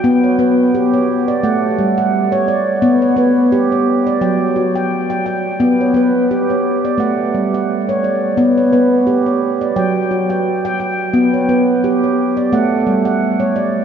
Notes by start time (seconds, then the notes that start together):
Already playing: G5
0.04 B3
0.24 C#5
0.39 B3 B4
0.74 G4
0.94 C#5
1.28 D5
1.43 A3 F#5
1.79 G3
1.98 F#5
2.32 C#5
2.48 D5
2.82 B3
3.02 C#5
3.16 B3 B4
3.52 G4
3.72 C#5
4.07 D5
4.21 F#3 G5
4.56 F#4
4.75 G5
5.10 G5
5.26 G5
5.60 B3
5.81 C#5
5.94 B3 B4
6.31 G4
6.50 C#5
6.85 D5
6.98 A3 F#5
7.35 G3
7.54 F#5
7.89 C#5
8.04 D5
8.37 B3
8.57 C#5
8.72 B3 B4
9.07 G4
9.26 C#5
9.61 D5
9.76 F#3 G5
10.11 F#4
10.30 G5
10.65 G5
10.80 G5
11.14 B3
11.34 C#5
11.49 B3 B4
11.84 G4
12.04 C#5
12.37 D5
12.53 A3 F#5
12.87 G3
13.05 F#5
13.40 C#5
13.56 D5